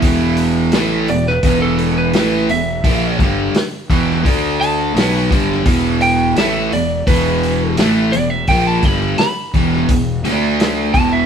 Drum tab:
HH |o-o-o-o-o-o-o-o-|o-o-o-o-o-o-o-o-|o-o-o-o-o-o-o-o-|o-o-o-o-o-o-o-o-|
SD |----o--o----o---|----o--o----o--o|----o-------o---|----o--o----o---|
BD |o-------o-------|o-o---o-o-----o-|o-------o-------|o-o---o-o-----o-|